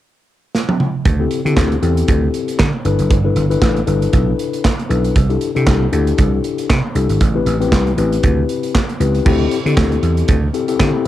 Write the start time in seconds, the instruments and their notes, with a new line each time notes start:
0.55 snare
0.69 high tom
0.80 mid tom
1.05 slap bass D2, kick, closed hi-hat
1.20 tine electric piano C4 E4 G4 A4
1.31 closed hi-hat
1.45 slap bass D3, tine electric piano C4 E4 G4 A4, closed hi-hat
1.57 slap bass D2, kick, snare, clap
1.72 closed hi-hat
1.82 slap bass E2, tine electric piano C4 E4 G4 A4, closed hi-hat
1.97 closed hi-hat
2.08 slap bass D2, kick, closed hi-hat
2.34 closed hi-hat
2.48 closed hi-hat
2.59 slap bass D3, kick, snare, clap
2.85 slap bass G1, tine electric piano D4 E4 A4 B4, closed hi-hat
2.99 slap bass F#1, closed hi-hat
3.10 slap bass G1, kick, closed hi-hat
3.24 tine electric piano D4 E4 A4 B4
3.36 slap bass G1, closed hi-hat
3.50 tine electric piano D4 E4 A4 B4, closed hi-hat
3.62 slap bass A1, kick, snare, clap
3.77 closed hi-hat
3.87 slap bass G1, tine electric piano D4 E4 A4 B4, closed hi-hat
4.02 closed hi-hat
4.13 slap bass B1, kick, closed hi-hat
4.39 closed hi-hat
4.53 closed hi-hat
4.65 kick, snare, clap
4.79 closed hi-hat
4.89 slap bass B1, tine electric piano D4 E4 A4 B4, closed hi-hat
5.04 closed hi-hat
5.16 slap bass C2, kick, closed hi-hat
5.29 tine electric piano D4 E4 G4 A4, closed hi-hat
5.41 closed hi-hat
5.55 slap bass C3, tine electric piano D4 E4 G4 A4, closed hi-hat
5.67 slap bass C2, kick, snare, clap
5.92 slap bass D2, tine electric piano D4 E4 G4 A4, closed hi-hat
6.07 closed hi-hat
6.18 slap bass C2, kick, closed hi-hat
6.44 closed hi-hat
6.58 closed hi-hat
6.70 slap bass C3, kick, snare, clap
6.95 slap bass C2, tine electric piano D4 E4 G4 A4, closed hi-hat
7.09 slap bass G#1, closed hi-hat
7.21 slap bass A1, kick, closed hi-hat
7.35 tine electric piano C4 E4 G4 B4
7.46 slap bass A1, closed hi-hat
7.60 tine electric piano C4 E4 G4 B4, closed hi-hat
7.72 slap bass C2, kick, snare, clap
7.87 closed hi-hat
7.97 slap bass A1, tine electric piano C4 E4 G4 B4, closed hi-hat
8.12 closed hi-hat
8.23 slap bass D2, kick, closed hi-hat
8.49 closed hi-hat
8.63 closed hi-hat
8.75 kick, snare, clap
8.89 closed hi-hat
9.00 slap bass C#2, tine electric piano C4 E4 G4 B4, closed hi-hat
9.14 closed hi-hat
9.25 slap bass D2, tine electric piano C4 E4 G4 A4, kick, crash
9.51 closed hi-hat
9.65 slap bass D3, tine electric piano C4 E4 G4 A4, closed hi-hat
9.77 slap bass D2, kick, snare, clap
9.92 closed hi-hat
10.03 slap bass E2, closed hi-hat
10.17 closed hi-hat
10.28 slap bass D2, kick, closed hi-hat
10.54 tine electric piano C4 E4 G4 A4, closed hi-hat
10.68 tine electric piano C4 E4 G4 A4, closed hi-hat
10.79 slap bass D3, tine electric piano C4 E4 G4 A4, kick, snare, clap